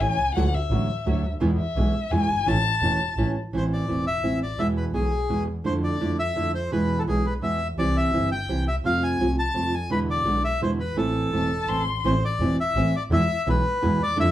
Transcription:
0.00 double bass A1, nylon-string guitar E3 A3 C#4 E4, violin G#5
0.17 double bass C2
0.35 double bass D2, nylon-string guitar D3 F#3 A3 E4 F#4, violin F#5
0.54 violin E5
0.70 double bass A1, nylon-string guitar D3 F#3 A3 E4 F#4
1.06 double bass D2, nylon-string guitar D3 F#3 A3 E4 F#4
1.23 double bass D2
1.40 double bass E2, nylon-string guitar B2 E3 G#3 B3 E4
1.59 violin E5
1.76 double bass B1, nylon-string guitar B2 E3 G#3 B3 E4
2.11 double bass E2, nylon-string guitar B2 E3 G#3 B3 E4, violin G#5
2.29 double bass G1
2.46 double bass A1, nylon-string guitar E3 A3 C#4 E4, violin A5
2.82 double bass E1, nylon-string guitar E3 A3 C#4 E4
3.17 double bass A1, nylon-string guitar E3 A3 C#4 E4
3.52 double bass A1, nylon-string guitar E3 A3 C4 E4
3.57 bandoneon C5
3.73 bandoneon D5
3.88 double bass E1, nylon-string guitar E3 A3 C4 E4
4.07 bandoneon E5
4.22 double bass A1, nylon-string guitar E3 A3 C4 E4
4.43 bandoneon D5
4.58 double bass E2, nylon-string guitar B2 E3 G#3 B3 E4, bandoneon E5
4.77 bandoneon B4
4.94 double bass B1, nylon-string guitar B2 E3 G#3 B3 E4, bandoneon G#4
5.29 double bass E2, nylon-string guitar B2 E3 G#3 B3 E4
5.64 double bass F2, nylon-string guitar D3 A3 D4 E4, bandoneon C5
5.84 bandoneon D5
6.00 double bass F2, nylon-string guitar D3 A3 D4 E4
6.19 bandoneon E5
6.36 double bass F2, nylon-string guitar D3 A3 D4 E4
6.55 bandoneon C5
6.71 double bass E2, nylon-string guitar B2 E3 G#3 B3 E4, bandoneon B4
6.99 bandoneon A4
7.07 double bass B1, nylon-string guitar B2 E3 G#3 B3 E4, bandoneon G#4
7.26 bandoneon B4
7.41 double bass E2, nylon-string guitar B2 E3 G#3 B3 E4, bandoneon E5
7.77 double bass C2, nylon-string guitar C3 E3 G3 C4 E4, bandoneon D5
7.97 bandoneon E5
8.12 double bass G1, nylon-string guitar C3 E3 G3 C4 E4
8.32 bandoneon G5
8.48 double bass C2, nylon-string guitar C3 E3 G3 C4 E4
8.68 bandoneon E5
8.83 double bass F2, nylon-string guitar C3 F3 A3 C4 F4, bandoneon F5
9.03 bandoneon G#5
9.19 double bass C2, nylon-string guitar C3 F3 A3 C4 F4
9.39 bandoneon A5
9.54 double bass F2, nylon-string guitar C3 F3 A3 C4 F4
9.74 bandoneon G#5
9.90 double bass E2, nylon-string guitar B2 D3 G#3 B3 E4, bandoneon B4
10.11 bandoneon D5
10.24 double bass B1, nylon-string guitar B2 D3 G#3 B3 E4
10.45 bandoneon E5
10.61 double bass E2, nylon-string guitar B2 D3 G#3 B3 E4, bandoneon C5
10.80 bandoneon B4
10.96 double bass A1, nylon-string guitar E3 A3 C4 E4, bandoneon A4
11.33 double bass E1, nylon-string guitar E3 A3 C4 E4, violin A5
11.68 double bass A1, nylon-string guitar E3 A3 C4 E4, violin C6
12.04 double bass A1, nylon-string guitar E3 A3 C4 E4, bandoneon C5
12.25 bandoneon D5
12.40 double bass E1, nylon-string guitar E3 A3 C4 E4
12.61 bandoneon E5
12.74 double bass A1, nylon-string guitar E3 A3 C4 E4
12.96 bandoneon D5
13.10 double bass E2, nylon-string guitar B2 E3 G#3 B3 E4, bandoneon E5
13.46 double bass B1, nylon-string guitar B2 E3 G#3 B3 E4, bandoneon B4
13.82 double bass E2, nylon-string guitar B2 E3 G#3 B3 E4
14.00 double bass D#2, bandoneon D5
14.16 double bass F2, nylon-string guitar D3 A3 D4 E4
14.20 bandoneon E5

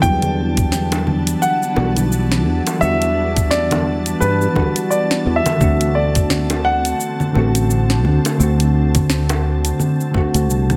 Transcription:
Already playing: ambient pad A5
0.00 fretless electric bass E2, synth keys E3 G3 D4, ambient pad E3 B3 D4, grand piano G5, kick, shaker
0.05 synth keys F#3
0.22 closed hi-hat, low conga, shaker
0.57 kick, closed hi-hat, shaker
0.72 snare, shaker
0.92 closed hi-hat, high bongo, shaker
1.07 low conga
1.27 closed hi-hat, shaker
1.42 grand piano F#5, shaker
1.63 shaker
1.74 fretless electric bass B1, synth keys E3 G3 D4, high bongo
1.80 synth keys F#4
1.97 closed hi-hat, low conga, shaker
2.12 shaker
2.32 snare, shaker
2.47 fretless electric bass E2
2.67 closed hi-hat, high bongo, shaker
2.79 fretless electric bass E2, synth keys E3 G3, grand piano E5, low conga, shaker
2.83 synth keys D4 F#4
3.02 closed hi-hat, shaker
3.37 kick, closed hi-hat, shaker
3.51 grand piano D5, snare, shaker
3.71 closed hi-hat, high bongo, low conga, shaker
4.06 closed hi-hat, shaker
4.20 fretless electric bass G2, grand piano B4, shaker
4.42 shaker
4.53 synth keys E3 G3 D4, kick, high bongo, low conga
4.59 synth keys F#4
4.76 closed hi-hat, shaker
4.90 grand piano D5, shaker
5.11 snare, shaker
5.26 fretless electric bass E2
5.36 grand piano E5
5.46 closed hi-hat, high bongo, low conga, shaker
5.58 fretless electric bass D2, synth keys D3 A3 C4, ambient pad D3 C4, kick, shaker
5.64 synth keys F#4
5.81 closed hi-hat, shaker
5.95 grand piano D5
6.15 kick, closed hi-hat, shaker
6.30 snare, low conga, shaker
6.50 closed hi-hat, high bongo, shaker
6.65 grand piano F#5
6.85 closed hi-hat, shaker
7.00 shaker
7.20 low conga, shaker
7.32 fretless electric bass A1, synth keys D3 A3 C4, high bongo
7.38 synth keys F#4
7.55 closed hi-hat, shaker
7.70 shaker
7.90 snare, shaker
8.05 fretless electric bass D2, low conga
8.25 closed hi-hat, high bongo, shaker
8.38 fretless electric bass D2, synth keys D3 A3 C4, shaker
8.43 synth keys F#4
8.60 closed hi-hat, shaker
8.95 kick, closed hi-hat, low conga, shaker
9.10 snare, shaker
9.29 closed hi-hat, high bongo, shaker
9.65 closed hi-hat, shaker
9.80 low conga, shaker
10.01 shaker
10.11 synth keys D3 A3, kick, high bongo
10.15 synth keys C4 F#4
10.34 fretless electric bass D2, closed hi-hat, shaker
10.49 fretless electric bass C2, shaker
10.70 cross-stick, closed hi-hat, low conga, shaker

